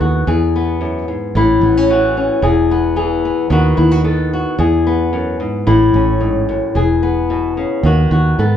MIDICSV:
0, 0, Header, 1, 3, 480
1, 0, Start_track
1, 0, Key_signature, 4, "major"
1, 0, Tempo, 541516
1, 232, Time_signature, 4, 2, 24, 8
1, 7596, End_track
2, 0, Start_track
2, 0, Title_t, "Nylon-string guitar"
2, 0, Program_c, 0, 24
2, 0, Note_on_c, 0, 51, 81
2, 0, Note_on_c, 0, 59, 72
2, 6, Note_on_c, 0, 66, 63
2, 208, Note_off_c, 0, 59, 0
2, 212, Note_off_c, 0, 66, 0
2, 213, Note_off_c, 0, 51, 0
2, 241, Note_on_c, 0, 40, 77
2, 248, Note_on_c, 0, 68, 69
2, 494, Note_on_c, 0, 59, 69
2, 712, Note_off_c, 0, 40, 0
2, 716, Note_on_c, 0, 42, 67
2, 954, Note_off_c, 0, 42, 0
2, 958, Note_on_c, 0, 44, 57
2, 1173, Note_off_c, 0, 68, 0
2, 1195, Note_off_c, 0, 44, 0
2, 1203, Note_off_c, 0, 59, 0
2, 1204, Note_on_c, 0, 45, 89
2, 1212, Note_on_c, 0, 64, 77
2, 1444, Note_on_c, 0, 59, 59
2, 1571, Note_off_c, 0, 59, 0
2, 1571, Note_on_c, 0, 61, 56
2, 1682, Note_off_c, 0, 64, 0
2, 1683, Note_on_c, 0, 52, 67
2, 1688, Note_on_c, 0, 66, 64
2, 1914, Note_off_c, 0, 61, 0
2, 1925, Note_on_c, 0, 61, 60
2, 2130, Note_off_c, 0, 52, 0
2, 2131, Note_off_c, 0, 61, 0
2, 2131, Note_off_c, 0, 66, 0
2, 2148, Note_on_c, 0, 40, 83
2, 2157, Note_off_c, 0, 45, 0
2, 2157, Note_on_c, 0, 68, 76
2, 2405, Note_on_c, 0, 59, 69
2, 2620, Note_off_c, 0, 68, 0
2, 2626, Note_on_c, 0, 52, 71
2, 2631, Note_on_c, 0, 68, 67
2, 2871, Note_off_c, 0, 59, 0
2, 2882, Note_on_c, 0, 59, 57
2, 3081, Note_off_c, 0, 52, 0
2, 3083, Note_off_c, 0, 68, 0
2, 3096, Note_off_c, 0, 59, 0
2, 3102, Note_on_c, 0, 51, 83
2, 3107, Note_on_c, 0, 59, 72
2, 3108, Note_off_c, 0, 40, 0
2, 3113, Note_on_c, 0, 63, 69
2, 3122, Note_on_c, 0, 66, 80
2, 3339, Note_off_c, 0, 66, 0
2, 3343, Note_on_c, 0, 64, 73
2, 3469, Note_off_c, 0, 64, 0
2, 3469, Note_on_c, 0, 66, 63
2, 3572, Note_off_c, 0, 59, 0
2, 3582, Note_on_c, 0, 59, 71
2, 3585, Note_off_c, 0, 66, 0
2, 3589, Note_on_c, 0, 69, 64
2, 3828, Note_off_c, 0, 69, 0
2, 3841, Note_on_c, 0, 66, 73
2, 4037, Note_off_c, 0, 51, 0
2, 4038, Note_off_c, 0, 59, 0
2, 4043, Note_off_c, 0, 63, 0
2, 4048, Note_off_c, 0, 66, 0
2, 4064, Note_on_c, 0, 40, 83
2, 4072, Note_on_c, 0, 68, 72
2, 4314, Note_on_c, 0, 59, 70
2, 4543, Note_off_c, 0, 40, 0
2, 4546, Note_on_c, 0, 42, 69
2, 4782, Note_off_c, 0, 42, 0
2, 4785, Note_on_c, 0, 44, 68
2, 5002, Note_off_c, 0, 68, 0
2, 5023, Note_on_c, 0, 45, 84
2, 5025, Note_on_c, 0, 64, 80
2, 5026, Note_off_c, 0, 44, 0
2, 5030, Note_off_c, 0, 59, 0
2, 5277, Note_on_c, 0, 61, 60
2, 5501, Note_on_c, 0, 44, 68
2, 5743, Note_off_c, 0, 44, 0
2, 5751, Note_on_c, 0, 42, 70
2, 5965, Note_off_c, 0, 61, 0
2, 5980, Note_off_c, 0, 42, 0
2, 5983, Note_on_c, 0, 40, 79
2, 5985, Note_off_c, 0, 45, 0
2, 5985, Note_off_c, 0, 64, 0
2, 5992, Note_on_c, 0, 68, 70
2, 6229, Note_on_c, 0, 59, 66
2, 6472, Note_on_c, 0, 47, 66
2, 6708, Note_off_c, 0, 47, 0
2, 6712, Note_on_c, 0, 49, 62
2, 6923, Note_off_c, 0, 68, 0
2, 6946, Note_off_c, 0, 40, 0
2, 6950, Note_off_c, 0, 49, 0
2, 6957, Note_on_c, 0, 51, 85
2, 6969, Note_on_c, 0, 66, 76
2, 7187, Note_off_c, 0, 66, 0
2, 7198, Note_on_c, 0, 66, 63
2, 7426, Note_off_c, 0, 59, 0
2, 7434, Note_off_c, 0, 66, 0
2, 7435, Note_on_c, 0, 59, 68
2, 7441, Note_on_c, 0, 69, 63
2, 7596, Note_off_c, 0, 51, 0
2, 7596, Note_off_c, 0, 59, 0
2, 7596, Note_off_c, 0, 69, 0
2, 7596, End_track
3, 0, Start_track
3, 0, Title_t, "Fingered electric bass"
3, 0, Program_c, 1, 33
3, 3, Note_on_c, 1, 39, 84
3, 214, Note_off_c, 1, 39, 0
3, 242, Note_on_c, 1, 40, 92
3, 1025, Note_off_c, 1, 40, 0
3, 1198, Note_on_c, 1, 33, 103
3, 1392, Note_off_c, 1, 33, 0
3, 1431, Note_on_c, 1, 33, 95
3, 2021, Note_off_c, 1, 33, 0
3, 2149, Note_on_c, 1, 28, 93
3, 2936, Note_off_c, 1, 28, 0
3, 3105, Note_on_c, 1, 39, 105
3, 3303, Note_off_c, 1, 39, 0
3, 3350, Note_on_c, 1, 39, 100
3, 3940, Note_off_c, 1, 39, 0
3, 4065, Note_on_c, 1, 40, 100
3, 4853, Note_off_c, 1, 40, 0
3, 5027, Note_on_c, 1, 33, 109
3, 5224, Note_off_c, 1, 33, 0
3, 5264, Note_on_c, 1, 33, 100
3, 5856, Note_off_c, 1, 33, 0
3, 5985, Note_on_c, 1, 28, 98
3, 6775, Note_off_c, 1, 28, 0
3, 6944, Note_on_c, 1, 39, 105
3, 7143, Note_off_c, 1, 39, 0
3, 7188, Note_on_c, 1, 39, 103
3, 7386, Note_off_c, 1, 39, 0
3, 7433, Note_on_c, 1, 44, 83
3, 7596, Note_off_c, 1, 44, 0
3, 7596, End_track
0, 0, End_of_file